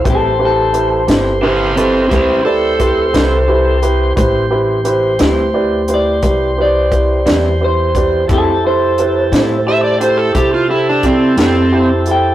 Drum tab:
HH |x-xx-xx-xx-x|x-xx-xx-xx-x|x-xx-xx-xx-x|
SD |---o-----o--|---o-----o--|---o-----o--|
BD |o-----o-o---|o-----o-o--o|o-----o-o---|